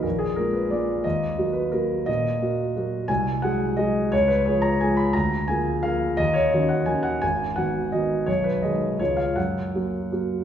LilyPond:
<<
  \new Staff \with { instrumentName = "Grand piano" } { \time 3/4 \key dis \minor \tempo 4 = 174 ais'8 gis'8 ais'8 b'8 d''4 | dis''4. b'8 ais'4 | dis''2. | gis''4 fis''4 dis''4 |
cis''8 b'8 cis''8 ais''8 gis''8 b''8 | ais''4 gis''4 eis''4 | dis''8 cis''8 dis''8 fis''8 gis''8 fis''8 | gis''4 fis''4 dis''4 |
cis''8 b'8 dis''4 cis''8 eis''8 | fis''2. | }
  \new Staff \with { instrumentName = "Grand piano" } { \clef bass \time 3/4 \key dis \minor ais,,4 <gis ais eis'>4 <gis ais eis'>4 | dis,4 <fis ais fis'>4 <fis ais fis'>4 | ais,4 <ais fis'>4 <fis ais fis'>4 | bis,,4 <fis gis gis'>4 <fis gis gis'>4 |
cis,4 <eis gis gis'>4 <eis gis gis'>4 | d,4 <eis ais gis'>4 <eis ais gis'>4 | dis,4 <dis cis' fis'>4 <dis cis' fis'>4 | gis,,4 <dis b fis'>4 <dis b fis'>4 |
b,,4 <dis gis gis'>4 <cis, eis gis gis'>4 | fis,4 <fis ais fis'>4 <fis ais fis'>4 | }
>>